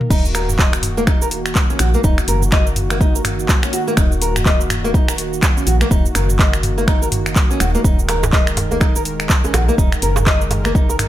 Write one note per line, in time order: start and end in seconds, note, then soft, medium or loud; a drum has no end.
0.01 mid tom medium
0.10 1.74 D#1 medium
0.10 11.08 D#3 medium
0.10 7.81 A#3 medium
0.10 0.23 D#4 loud
0.10 7.84 F#4 medium
0.10 kick loud
0.10 crash loud
0.10 shaker medium
0.25 shaker medium
0.35 0.48 A#4 medium
0.35 finger snap medium
0.35 open hi-hat medium
0.35 shaker medium
0.49 mid tom medium
0.49 shaker medium
0.59 0.72 D#5 loud
0.59 kick loud
0.59 clap loud
0.59 shaker medium
0.73 finger snap medium
0.73 shaker medium
0.83 mid tom medium
0.83 open hi-hat medium
0.83 shaker medium
0.97 1.03 A#3 loud
0.97 shaker medium
1.07 1.20 D#4 loud
1.07 finger snap medium
1.07 kick loud
1.07 shaker soft
1.22 1.27 A#4 medium
1.22 shaker medium
1.31 open hi-hat medium
1.31 shaker medium
1.46 finger snap medium
1.46 shaker soft
1.55 kick loud
1.55 clap loud
1.55 shaker medium
1.70 1.79 C#4 medium
1.70 shaker medium
1.79 1.96 A#1 medium
1.79 1.88 F#4 medium
1.79 finger snap medium
1.79 open hi-hat medium
1.79 shaker medium
1.94 2.00 A#3 medium
1.94 shaker medium
2.04 2.21 D#1 loud
2.04 2.17 D#4 loud
2.04 kick loud
2.04 shaker medium
2.18 finger snap medium
2.18 shaker medium
2.28 3.67 F#1 loud
2.28 2.41 A#4 medium
2.28 open hi-hat medium
2.28 shaker loud
2.42 mid tom medium
2.42 shaker medium
2.52 2.65 D#5 loud
2.52 finger snap loud
2.52 kick loud
2.52 clap medium
2.52 shaker medium
2.67 shaker medium
2.76 mid tom medium
2.76 open hi-hat medium
2.76 shaker medium
2.90 2.96 A#3 loud
2.90 finger snap medium
2.90 shaker medium
3.01 3.14 D#4 medium
3.01 kick loud
3.01 shaker medium
3.15 3.20 A#4 medium
3.15 shaker loud
3.25 finger snap medium
3.25 mid tom medium
3.25 open hi-hat loud
3.25 shaker medium
3.39 shaker medium
3.49 kick loud
3.49 clap loud
3.49 shaker medium
3.63 3.73 C#4 medium
3.63 finger snap medium
3.63 shaker medium
3.73 3.81 F#4 medium
3.73 open hi-hat medium
3.73 shaker medium
3.87 3.93 A#3 loud
3.87 shaker medium
3.97 5.61 D#1 medium
3.97 4.10 D#4 loud
3.97 finger snap loud
3.97 kick loud
3.97 shaker loud
4.12 shaker medium
4.22 4.35 A#4 medium
4.22 open hi-hat medium
4.22 shaker medium
4.36 finger snap medium
4.36 mid tom medium
4.36 shaker loud
4.46 4.59 D#5 loud
4.46 kick loud
4.46 clap loud
4.46 shaker medium
4.61 shaker medium
4.70 finger snap loud
4.70 mid tom medium
4.70 open hi-hat medium
4.70 shaker medium
4.84 4.90 A#3 loud
4.84 shaker medium
4.94 5.07 D#4 loud
4.94 kick loud
4.94 shaker medium
5.08 5.14 A#4 medium
5.08 finger snap medium
5.08 shaker loud
5.18 open hi-hat medium
5.18 shaker medium
5.33 shaker medium
5.43 finger snap medium
5.43 kick loud
5.43 clap medium
5.43 shaker loud
5.57 5.66 C#4 medium
5.57 shaker medium
5.67 5.83 A#1 medium
5.67 5.75 F#4 medium
5.67 open hi-hat medium
5.67 shaker loud
5.81 5.87 A#3 loud
5.81 finger snap medium
5.81 shaker medium
5.91 6.08 D#1 medium
5.91 6.04 D#4 loud
5.91 kick loud
5.91 shaker loud
6.06 shaker medium
6.15 7.52 F#1 loud
6.15 6.28 A#4 medium
6.15 finger snap medium
6.15 open hi-hat medium
6.15 shaker loud
6.29 mid tom medium
6.29 shaker medium
6.39 6.52 D#5 loud
6.39 kick loud
6.39 clap loud
6.39 shaker medium
6.53 finger snap medium
6.53 shaker medium
6.63 mid tom medium
6.63 open hi-hat medium
6.63 shaker medium
6.78 6.83 A#3 loud
6.78 shaker medium
6.88 7.01 D#4 loud
6.88 finger snap medium
6.88 kick loud
6.88 shaker medium
7.02 7.07 A#4 medium
7.02 shaker loud
7.12 mid tom medium
7.12 open hi-hat medium
7.12 shaker medium
7.26 finger snap medium
7.26 shaker medium
7.36 kick loud
7.36 clap loud
7.36 shaker medium
7.50 7.57 A#1 medium
7.50 7.60 C#4 medium
7.50 shaker medium
7.60 7.77 D#1 loud
7.60 7.68 F#4 medium
7.60 finger snap medium
7.60 open hi-hat medium
7.60 shaker loud
7.75 7.80 A#3 loud
7.75 shaker medium
7.84 9.48 D#1 medium
7.84 11.08 G#3 medium
7.84 7.97 D#4 loud
7.84 11.08 A#4 medium
7.84 kick loud
7.84 shaker medium
7.99 shaker medium
8.09 8.22 A#4 medium
8.09 finger snap medium
8.09 open hi-hat medium
8.09 djembe slap medium
8.09 shaker medium
8.23 mid tom medium
8.23 djembe slap loud
8.23 djembe tone medium
8.23 shaker medium
8.33 8.46 D#5 loud
8.33 kick loud
8.33 clap loud
8.33 shaker medium
8.47 finger snap medium
8.47 shaker medium
8.57 mid tom medium
8.57 open hi-hat medium
8.57 djembe slap medium
8.57 shaker medium
8.71 8.77 A#3 loud
8.71 djembe tone medium
8.71 shaker medium
8.80 8.94 D#4 loud
8.80 finger snap medium
8.80 kick loud
8.80 djembe tone medium
8.80 shaker medium
8.96 9.01 A#4 medium
8.96 shaker loud
9.05 open hi-hat medium
9.05 shaker medium
9.20 finger snap medium
9.20 shaker medium
9.30 kick loud
9.30 clap loud
9.30 shaker medium
9.44 9.54 C#4 medium
9.44 djembe tone medium
9.44 shaker medium
9.54 9.71 A#1 medium
9.54 9.62 F#4 medium
9.54 finger snap medium
9.54 open hi-hat medium
9.54 djembe slap medium
9.54 djembe tone medium
9.54 shaker loud
9.68 9.74 A#3 loud
9.68 shaker medium
9.78 9.95 D#1 medium
9.78 9.91 D#4 loud
9.78 kick loud
9.78 shaker medium
9.92 finger snap medium
9.92 shaker medium
10.02 11.08 F#1 loud
10.02 10.15 A#4 medium
10.02 open hi-hat medium
10.02 shaker medium
10.16 mid tom medium
10.16 djembe slap loud
10.16 djembe tone medium
10.16 shaker medium
10.27 10.40 D#5 loud
10.27 finger snap medium
10.27 kick loud
10.27 clap loud
10.27 shaker soft
10.41 shaker medium
10.51 mid tom medium
10.51 open hi-hat medium
10.51 djembe slap medium
10.51 shaker soft
10.64 10.71 A#3 loud
10.64 finger snap medium
10.64 djembe tone medium
10.64 shaker medium
10.75 10.88 D#4 loud
10.75 kick loud
10.75 shaker soft
10.89 10.95 A#4 medium
10.89 djembe tone medium
10.89 shaker medium
10.99 finger snap medium
10.99 mid tom loud
10.99 open hi-hat medium
10.99 shaker medium